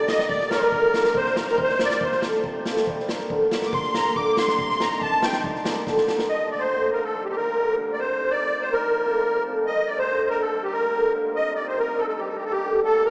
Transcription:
Already playing: hammered dulcimer D3
0.08 hammered dulcimer A#3 D4 G4, accordion D#5, violin D#5, snare
0.19 snare
0.28 hammered dulcimer G3, accordion D5, violin D5, kick
0.41 snare
0.50 hammered dulcimer A#3 D4 A#4, accordion A#4, violin A#4, snare
0.72 hammered dulcimer D3, kick
0.94 hammered dulcimer A#3 D4 A#4, snare
1.04 snare
1.15 hammered dulcimer C3, violin C5, accordion C5, kick
1.26 snare
1.36 hammered dulcimer C4 D#4 G4, violin A#4, accordion A#4, snare
1.44 accordion C5, snare
1.48 violin A#4, accordion A#4
1.57 hammered dulcimer C3, violin C5, kick
1.62 accordion C5
1.69 snare
1.79 hammered dulcimer C4 D#4 G4, snare
1.84 accordion D5
1.90 snare
2.00 hammered dulcimer F3, violin C5, kick
2.05 accordion C5
2.12 snare
2.22 hammered dulcimer C4 F4 A4, snare
2.33 snare
2.44 hammered dulcimer C3, kick
2.65 hammered dulcimer C4 F4 A4, snare
2.76 snare
2.87 hammered dulcimer G3, kick
3.00 snare
3.08 hammered dulcimer A#3 D4 G4, snare
3.20 snare
3.30 hammered dulcimer D3, kick
3.51 hammered dulcimer A#3 D4 G4, snare
3.62 violin D6, snare
3.73 hammered dulcimer G3, accordion C6, violin C6, kick, snare
3.83 snare
3.94 hammered dulcimer A#3 D4 A#4, accordion A#5, snare
4.05 snare
4.16 hammered dulcimer D3, accordion D6, violin D6, kick
4.30 violin D6
4.37 hammered dulcimer A#3 D4 G4, violin C6, accordion C6, snare
4.48 snare
4.59 hammered dulcimer C3, kick
4.70 snare
4.80 hammered dulcimer C4 D#4 G4, accordion A#5, snare
4.91 snare
5.01 hammered dulcimer C3, violin A5, accordion A5, kick
5.22 hammered dulcimer C4 D#4 G4, accordion G5, snare
5.33 snare
5.44 hammered dulcimer G3, kick
5.55 snare
5.64 hammered dulcimer A#3 D4 G4, snare
5.77 snare
5.86 hammered dulcimer D3, kick, snare
5.97 snare
6.08 hammered dulcimer A#3 D4 G4, snare
6.19 snare
6.29 hammered dulcimer G3, accordion D#5
6.51 hammered dulcimer A#3 D4 G4, accordion D5
6.59 accordion C5
6.73 hammered dulcimer D3
6.92 hammered dulcimer A#3 D4 F4, accordion A#4
7.04 accordion A4
7.15 hammered dulcimer G3
7.25 accordion G4
7.29 accordion G4 A4
7.36 hammered dulcimer A#3 D4 F4, accordion A#4
7.58 hammered dulcimer D3
7.77 hammered dulcimer A#3 D4 F4
7.93 accordion D5
7.99 hammered dulcimer C3, accordion C5
8.19 hammered dulcimer C4 D#4 G4
8.31 accordion D5
8.41 hammered dulcimer C3
8.62 hammered dulcimer C4 D#4 G4, accordion C5
8.73 accordion A#4
8.84 hammered dulcimer F3
9.05 hammered dulcimer C4 F4 A4
9.27 hammered dulcimer C3
9.48 hammered dulcimer C4 F4 A4
9.66 hammered dulcimer G3, accordion D#5
9.87 hammered dulcimer A#3 D4 G4, accordion D5
9.99 accordion C5
10.11 hammered dulcimer D3
10.29 hammered dulcimer A#3 D4 G4, accordion A#4
10.41 accordion A4
10.53 hammered dulcimer G3
10.63 accordion G4
10.72 hammered dulcimer A#3 D4 G4, accordion A#4
10.95 hammered dulcimer D3
11.15 hammered dulcimer A#3 D4 F4
11.36 hammered dulcimer C3, accordion D#5
11.55 hammered dulcimer C4 D#4 G4, accordion D5 D#5
11.68 accordion C5
11.78 hammered dulcimer C3, accordion A#4
11.99 hammered dulcimer C4 D#4 G4, accordion A4
12.08 accordion A4
12.19 hammered dulcimer G3, accordion G4
12.28 accordion A4
12.36 accordion G4
12.42 hammered dulcimer A#3 D4 G4, accordion A4
12.51 accordion G4
12.64 hammered dulcimer D3
12.84 hammered dulcimer A#3 D4 A4, accordion A4, violin A4
13.05 hammered dulcimer G3, accordion A#4, violin A#4

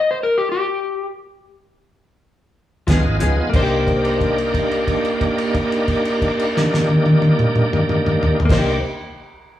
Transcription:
0.11 electric slide guitar C5
0.23 electric slide guitar A#4
0.38 electric slide guitar G4
0.52 electric slide guitar G4
2.87 fingered electric bass C#2, clean electric guitar F3 B3 C#4 G#4, tonewheel organ B3 D#4 F4 G#4, kick, snare, closed hi-hat
3.04 fingered electric bass G#1, muted clean electric guitar stroke
3.19 fingered electric bass C#2, clean electric guitar F3 B3 C#4 G#4, tonewheel organ B3 D#4 F4 G#4, closed hi-hat
3.37 muted clean electric guitar stroke
3.50 fingered electric bass C2, clean electric guitar A#3, tonewheel organ D4 G4, kick
3.54 tonewheel organ A#3 D#4, electric slide guitar C5, crash
3.63 clean electric guitar G4
3.87 kick, crash
4.05 crash
4.21 kick, crash
4.38 crash
4.54 kick, crash
4.71 crash
4.87 kick, crash
5.05 crash
5.21 kick, crash
5.38 crash
5.54 kick, crash
5.72 crash
5.88 kick, crash
6.05 crash
6.22 kick, crash
6.39 crash
6.57 snare
6.74 snare
6.89 high tom
7.06 high tom
7.22 high tom
7.39 mid tom
7.56 mid tom
7.73 mid tom
7.89 mid tom
8.06 mid tom
8.23 floor tom
8.40 floor tom
8.45 clean electric guitar A#3, tonewheel organ A#3 D4 D#4 G4
8.50 fingered electric bass C2, clean electric guitar D#4, electric slide guitar C5, kick, snare, crash
8.59 clean electric guitar G4

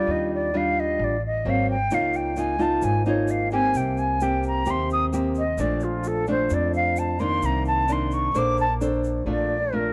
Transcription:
Already playing: nylon-string guitar G3 D4 F4, flute D5
0.07 upright bass D#2, nylon-string guitar D#3
0.11 flute D#5
0.34 flute D5
0.54 nylon-string guitar G3 D4 F4, flute F5
0.80 flute D#5
0.99 upright bass A1
1.04 flute D5
1.26 flute D#5
1.45 upright bass G#1, nylon-string guitar F#3 A#3 C4
1.50 flute F5
1.70 flute G5
1.91 upright bass C#2, nylon-string guitar C#3 A#3 D#4 F4, flute F5, shaker
2.13 flute G5, shaker
2.36 nylon-string guitar A#3 D#4 F4, flute G#5, shaker
2.58 nylon-string guitar A#3 D#4 F4, flute A5, shaker
2.82 upright bass G#1, nylon-string guitar G#2, flute G#5, shaker
3.05 nylon-string guitar A#3 D#4 F4, flute C#5, shaker
3.28 flute F5, shaker
3.51 nylon-string guitar A#3 C4 G4, flute G#5, shaker
3.74 upright bass C2, nylon-string guitar C3, flute G5, shaker
3.97 flute G#5, shaker
4.20 nylon-string guitar A#3 C4 G4, flute G5, shaker
4.43 shaker
4.47 flute A#5
4.65 upright bass D#2, nylon-string guitar C3 A#3 C4 G4, shaker
4.71 flute C6
4.90 flute D#6, shaker
5.13 nylon-string guitar A#3 C4 G4, shaker
5.35 flute D#5, shaker
5.58 upright bass A#1, nylon-string guitar A#2 F3 A3 D4, flute D5, shaker
5.80 flute F4, shaker
6.04 shaker
6.08 flute A4
6.27 nylon-string guitar F3 A3 D4, flute C5, shaker
6.50 nylon-string guitar F2, upright bass F2, shaker
6.54 flute D5
6.74 flute F5, shaker
6.96 flute A5, shaker
7.19 nylon-string guitar D#3 A#3 D4, flute C6, shaker
7.42 upright bass C2, nylon-string guitar C3, flute A#5, shaker
7.65 flute A5, shaker
7.89 nylon-string guitar D#3 A#3 D4, shaker
7.93 flute C6
8.12 flute C#6, shaker
8.34 upright bass A#1, nylon-string guitar A#3 D4 A4 C5, shaker
8.38 flute D6
8.57 flute A5, shaker
8.81 nylon-string guitar D4 A4 C5, shaker
9.04 shaker
9.26 upright bass A#1, nylon-string guitar A#2 A3 D4 F4
9.30 flute D5
9.73 nylon-string guitar A3 D4 F4, flute A#4

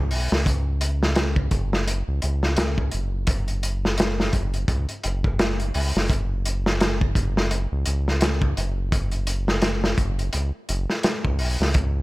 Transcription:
Already playing: analog synth bass C#2
0.11 analog synth bass B1, open hi-hat
0.32 analog synth bass C#2, snare
0.46 kick, closed hi-hat
0.81 closed hi-hat
1.03 snare
1.15 snare, closed hi-hat
1.36 kick
1.51 analog synth bass F#1, kick, closed hi-hat
1.73 snare
1.88 closed hi-hat
2.08 analog synth bass C#2
2.22 analog synth bass C#2, closed hi-hat
2.43 snare
2.57 snare, closed hi-hat
2.78 kick
2.92 analog synth bass F#1, closed hi-hat
3.27 kick, closed hi-hat
3.48 closed hi-hat
3.63 closed hi-hat
3.85 snare
3.98 snare, closed hi-hat
4.20 snare
4.33 analog synth bass F#1, kick, closed hi-hat
4.54 closed hi-hat
4.68 analog synth bass C#2, kick, closed hi-hat
4.89 closed hi-hat
5.04 analog synth bass F#1, closed hi-hat
5.24 kick
5.39 snare, closed hi-hat
5.60 closed hi-hat
5.74 analog synth bass C#2, open hi-hat
5.96 analog synth bass F#1, snare
6.10 kick, closed hi-hat
6.45 closed hi-hat
6.66 snare
6.80 snare, closed hi-hat
7.01 kick
7.15 analog synth bass F#1, kick, closed hi-hat
7.37 snare
7.51 closed hi-hat
7.72 analog synth bass C#2
7.86 analog synth bass C#2, closed hi-hat
8.08 snare
8.21 snare, closed hi-hat
8.42 kick
8.57 analog synth bass F#1, closed hi-hat
8.92 kick, closed hi-hat
9.11 closed hi-hat
9.27 closed hi-hat
9.48 snare
9.62 snare, closed hi-hat
9.84 snare
9.98 analog synth bass F#1, kick, closed hi-hat
10.19 closed hi-hat
10.33 analog synth bass C#2, closed hi-hat
10.69 analog synth bass F#1, closed hi-hat
10.90 snare
11.03 snare, closed hi-hat
11.25 analog synth bass C#2, kick
11.39 analog synth bass B1, open hi-hat
11.60 analog synth bass C#2, snare
11.74 kick, closed hi-hat

